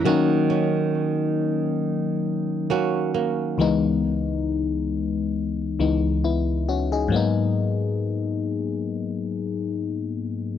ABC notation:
X:1
M:4/4
L:1/16
Q:"Swing 16ths" 1/4=68
K:G#m
V:1 name="Nylon-string guitar"
[D,F]2 C8- C2 [A,CF]2 A,2 | z16 | z16 |]
V:2 name="FM electric piano"
z16 | z12 [B,E]2 [CF] [DG]- | [DG] z12 z3 |]
V:3 name="FM electric piano"
[F,A,CD]16 | [C,,E,G,B,D]8- [C,,E,G,B,D]2 [C,,E,G,B,D]6 | [G,,F,A,B,D]16 |]